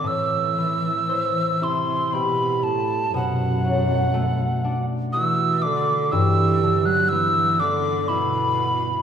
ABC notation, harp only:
X:1
M:3/4
L:1/8
Q:1/4=60
K:Ador
V:1 name="Harp"
A,, E, c E G2 | B,, F, A, D F2 | G,, D, B, D E2 |]